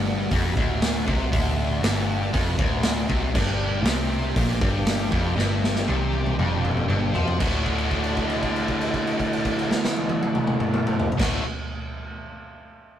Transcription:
0.00 0.27 G1 medium
0.00 0.30 G2 loud
0.00 3.31 F#4 medium
0.00 3.32 A4 medium
0.00 3.31 D5 medium
0.00 3.31 F#5 medium
0.31 0.55 F1 medium
0.31 0.56 F2 medium
0.31 kick loud
0.31 open hi-hat medium
0.56 1.04 D1 medium
0.56 1.06 D2 medium
0.56 kick loud
0.82 snare medium
0.82 open hi-hat medium
1.06 1.31 C2 loud
1.06 1.31 C3 loud
1.06 kick loud
1.31 1.80 D1 medium
1.31 1.82 D2 loud
1.31 kick loud
1.31 open hi-hat medium
1.83 2.30 G1 medium
1.83 2.32 G2 loud
1.83 snare loud
1.83 open hi-hat medium
2.33 2.58 F1 loud
2.33 2.57 F2 loud
2.33 kick loud
2.33 open hi-hat medium
2.58 3.07 D1 medium
2.58 3.08 D2 loud
2.58 kick loud
2.83 snare loud
2.83 open hi-hat soft
3.09 3.33 C2 loud
3.09 3.34 C3 loud
3.09 kick loud
3.34 3.82 G1 loud
3.34 3.86 G2 loud
3.34 7.37 D4 medium
3.34 7.37 G4 medium
3.34 7.37 D5 medium
3.34 7.38 G5 medium
3.34 kick loud
3.34 crash loud
3.83 4.32 C2 medium
3.83 4.36 C3 loud
3.83 snare loud
3.83 open hi-hat medium
4.36 4.60 A#1 medium
4.36 4.61 A#2 loud
4.36 kick loud
4.36 open hi-hat medium
4.61 5.09 G1 medium
4.61 5.11 G2 loud
4.61 kick loud
4.86 snare loud
4.86 open hi-hat medium
5.11 5.36 F1 loud
5.11 5.36 F2 loud
5.11 kick loud
5.36 5.85 G1 medium
5.36 5.87 G2 loud
5.36 snare medium
5.64 snare medium
5.75 snare medium
5.88 6.36 C2 medium
5.88 6.38 C3 loud
5.88 high tom medium
6.13 high tom medium
6.26 mid tom medium
6.39 6.87 F1 medium
6.39 6.88 F2 medium
6.39 mid tom medium
6.65 mid tom medium
6.77 mid tom medium
6.88 7.14 G1 medium
6.88 7.14 G2 loud
6.88 mid tom medium
7.14 7.39 F2 medium
7.14 7.39 F3 loud
7.14 floor tom loud
7.28 floor tom medium
7.39 11.08 D1 medium
7.39 11.11 D2 medium
7.39 11.12 A2 loud
7.39 11.12 D3 medium
7.39 11.13 A3 loud
7.39 11.08 F#4 medium
7.39 11.13 F#4 loud
7.39 11.09 A4 medium
7.39 11.08 D5 medium
7.39 11.08 F#5 medium
7.39 kick loud
7.39 crash medium
7.66 kick medium
7.66 crash soft
7.78 crash soft
7.91 kick medium
7.91 crash soft
8.04 crash soft
8.17 kick medium
8.17 crash soft
8.30 crash soft
8.43 kick medium
8.43 crash soft
8.56 crash soft
8.68 kick medium
8.68 crash soft
8.81 crash medium
8.94 kick medium
8.94 crash medium
9.07 crash soft
9.20 kick medium
9.20 crash medium
9.33 crash medium
9.45 kick medium
9.45 crash medium
9.59 crash soft
9.71 snare medium
9.85 snare loud
9.97 high tom medium
10.09 high tom loud
10.23 high tom loud
10.35 mid tom medium
10.47 mid tom loud
10.60 mid tom medium
10.74 mid tom loud
10.87 mid tom loud
11.00 floor tom loud
11.12 floor tom loud
11.17 11.40 D1 medium
11.17 11.41 D2 medium
11.17 11.42 A2 medium
11.17 11.42 D3 loud
11.17 11.42 A3 medium
11.17 11.41 F#4 medium
11.17 11.43 F#4 loud
11.17 11.41 A4 medium
11.17 11.41 D5 medium
11.17 11.42 F#5 medium
11.17 kick loud
11.17 snare medium
11.17 crash loud

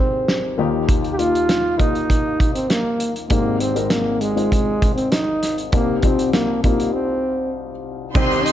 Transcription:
0.00 0.54 G#1 medium
0.00 0.54 G#2 medium
0.00 0.60 G#3 medium
0.00 0.59 C4 medium
0.00 0.59 D#4 medium
0.00 0.59 G4 medium
0.00 0.60 A#4 medium
0.28 snare medium
0.58 2.96 D#2 medium
0.58 2.96 D#3 medium
0.58 1.11 A#3 medium
0.58 1.12 D#4 medium
0.58 1.12 F4 medium
0.58 1.12 G4 medium
0.89 kick medium
0.89 closed hi-hat medium
1.04 closed hi-hat soft
1.13 1.20 G4 medium
1.19 1.72 A#3 medium
1.19 1.72 D#4 medium
1.19 1.80 F4 medium
1.19 1.73 F4 medium
1.19 1.73 G4 medium
1.19 closed hi-hat medium
1.35 closed hi-hat soft
1.49 snare medium
1.49 closed hi-hat medium
1.78 2.86 A#3 medium
1.78 2.54 D#4 medium
1.78 2.86 D#4 medium
1.78 2.86 F4 medium
1.78 2.86 A#4 medium
1.78 kick medium
1.78 closed hi-hat medium
1.95 closed hi-hat soft
2.10 kick medium
2.10 closed hi-hat medium
2.40 kick medium
2.40 closed hi-hat medium
2.54 2.71 C4 medium
2.54 closed hi-hat soft
2.70 3.15 A#3 medium
2.70 snare medium
2.70 closed hi-hat medium
3.00 closed hi-hat medium
3.16 closed hi-hat soft
3.30 5.69 G#1 medium
3.30 5.69 G#2 medium
3.30 3.70 G#3 medium
3.30 3.62 A#3 medium
3.30 3.71 C4 medium
3.30 3.71 D#4 medium
3.30 3.71 G4 medium
3.30 kick loud
3.30 closed hi-hat medium
3.60 3.92 C4 medium
3.60 closed hi-hat medium
3.75 4.29 G#3 medium
3.75 4.29 C4 medium
3.75 4.29 D#4 medium
3.75 4.29 A#4 medium
3.75 closed hi-hat soft
3.90 4.22 A#3 medium
3.90 snare loud
3.90 closed hi-hat medium
4.21 4.95 G#3 medium
4.21 closed hi-hat soft
4.36 5.43 G#3 medium
4.36 5.43 C4 medium
4.36 5.43 D#4 medium
4.36 5.43 F4 medium
4.36 closed hi-hat soft
4.52 kick medium
4.52 closed hi-hat medium
4.82 kick medium
4.82 closed hi-hat medium
4.95 5.13 C4 medium
4.95 closed hi-hat soft
5.12 5.57 D#4 medium
5.12 snare medium
5.12 closed hi-hat medium
5.43 snare soft
5.43 closed hi-hat medium
5.58 closed hi-hat soft
5.72 8.11 C2 medium
5.72 8.11 C3 medium
5.72 5.99 G3 medium
5.72 6.04 A#3 medium
5.72 6.00 C4 medium
5.72 6.00 D#4 medium
5.72 6.00 G4 medium
5.72 kick loud
5.72 closed hi-hat medium
6.02 6.57 G3 medium
6.02 6.32 C4 medium
6.02 6.57 C4 medium
6.02 6.57 D#4 medium
6.02 6.57 F4 medium
6.02 kick medium
6.02 closed hi-hat medium
6.19 closed hi-hat soft
6.33 6.61 A#3 medium
6.33 snare medium
6.33 closed hi-hat medium
6.63 7.70 G3 medium
6.63 6.95 A#3 medium
6.63 7.71 C4 medium
6.63 7.71 D#4 medium
6.63 7.71 F4 medium
6.63 kick medium
6.63 closed hi-hat soft
6.80 closed hi-hat soft
6.93 7.54 C4 medium
8.15 8.52 C2 medium
8.15 8.52 C3 medium
8.15 8.52 D#3 medium
8.15 8.52 G3 medium
8.15 8.52 C4 medium
8.15 8.47 C4 medium
8.15 8.52 D#4 medium
8.15 8.52 G4 medium
8.15 8.52 C5 medium
8.15 8.52 C6 medium
8.15 kick loud
8.15 crash medium
8.15 shaker medium
8.32 shaker soft
8.46 8.52 D#4 medium
8.46 hi-hat pedal medium
8.46 open hi-hat medium
8.46 shaker soft

